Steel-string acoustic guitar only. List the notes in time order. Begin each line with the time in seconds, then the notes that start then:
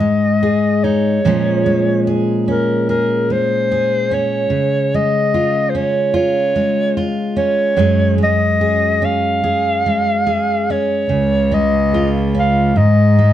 Already playing: G#2
0.00 G#3
0.43 G#4
0.84 D#4
1.25 A#2 F3 G#3 C#4 G#4
1.66 G#3
2.07 G#4
2.48 C#4
2.89 G#4
3.30 G#3
3.72 G#4
4.11 C#4
4.50 C#3
4.94 G#3
5.34 F4
5.75 C#4
6.14 F4
6.56 G#3
6.97 F4
7.36 C#4
7.76 F#2 F#3 G#3 C#4 G#4
8.18 G#3
8.61 G#4
9.02 C#4
9.44 G#4
9.86 G#3
10.27 G#4
10.70 C#4
11.09 C#3
11.52 G#3
11.94 F4
12.34 C#4
12.76 G#2
13.19 G#3